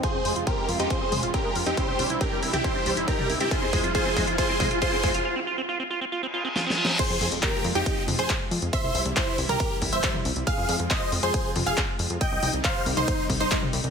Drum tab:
CC |------------------------------------------------|------------------------------------------------|------------------------------------------------|------------------------------------------------|
RD |------------------------------------------------|------------------------------------------------|------------------------------------------------|------------------------------------------------|
HH |x-----o--x--x-----o--x--x-----o--x--x-----o--x--|x-----o--x--x-----o--x--x-----o--x--x-----o--x--|x-----o--x--x-----o--x--x-----o--x--x-----o--x--|------------------------------------------------|
CP |------------------------------------------------|------------------------------------------------|------------------------------------------------|------------------------------------------------|
SD |------------------------------------------------|------------------------------------------------|------------------------------------------------|------------------------------------o---o---o---|
T2 |------------------------------o-----------------|---------------------o-----------------o--------|------------------------------o-----------------|------------------------------------------------|
BD |o-----------o-----------o-----------o-----------|o-----------o-----------o-----------o-----------|o-----o-----o-----o-----o-----o-----o-----o-----|------------------------------------------------|

CC |x-----------------------------------------------|------------------------------------------------|------------------------------------------------|------------------------------------------------|
RD |x-----------x-----------x-----------x-----------|x-----------x-----------x-----------x-----------|x-----------x-----------x-----------x-----------|x-----------x-----------x-----------x-----------|
HH |x-----o--x--x-----o--x--x-----o--x--x-----o--x--|x-----o--x--x-----o--x--x-----o--x--x-----o--x--|x-----o--x--x-----o--x--x-----o--x--x-----o--x--|x-----o--x--x-----o--x--x-----o--x--x-----o--x--|
CP |------------x-----------------------x-----------|------------x-----------------------x-----------|------------x-----------------------x-----------|------------x-----------------------x-----------|
SD |------------------------------------------------|------------------------------------------------|------------------------------------------------|------------------------------------------------|
T2 |------------------------------o-----------------|---------------------o-----------------o--------|------------------------------o-----------------|---------------------o-----------------o--------|
BD |o-----------o-----------o-----------o-----------|o-----------o-----------o-----o-----o-----------|o-----------o-----------o-----------o-----------|o-----------o-----------o-----o-----o-----------|